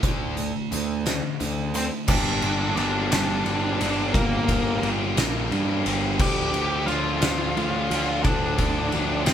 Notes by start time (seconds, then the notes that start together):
0.03 D2 D3 A3 D4, kick, closed hi-hat
0.37 D3 A3, closed hi-hat
0.71 D2 D3 A3, closed hi-hat
1.06 D3 A3, snare, closed hi-hat
1.39 D2 D3 A3, closed hi-hat
1.74 D3 A3 C4 C5, closed hi-hat
2.07 G1 G2 D3 G3 A#3 D4 D5, kick, crash
2.41 G1 G3 A#3 D4, ride
2.75 G1 D3 G3 A#3 D4 D5, ride
3.10 G1 G2 D3 G3 A#3 D4 D5, snare, ride
3.44 G1 D3 G3 A#3 D4, ride
3.79 G1 G3 A#3 D4, ride
4.13 G1 G2 D3 G3 A#3 D4 A#4, kick, ride
4.47 G1 G3 A#3 D4, kick, ride
4.82 G1 D3 G3 A#3 D4, ride
5.16 A#1 G2 D3 G3 A#3 D4, snare, ride
5.49 G2 D3 G3 A#3 D4, ride
5.85 G1 G3 A#3 D4, ride
6.18 D2 D3 F3 A3 D4 G4 G5, kick, crash
6.52 D2 F3 A3 D4, ride
6.86 D2 D3 F3 A3 D4 F4 F5, ride
7.21 D2 D3 F3 A3 D4, snare, ride
7.55 D2 D3 F3 A3 D4, ride
7.89 D2 F3 A3 D4, ride
8.23 D2 D3 F3 A3 D4 D5, kick, ride
8.57 D2 F3 A3 D4, kick, ride
8.92 D2 D3 F3 A3 D4, ride
9.26 F2 D3 F3 A3 C4 D4 C5, snare, ride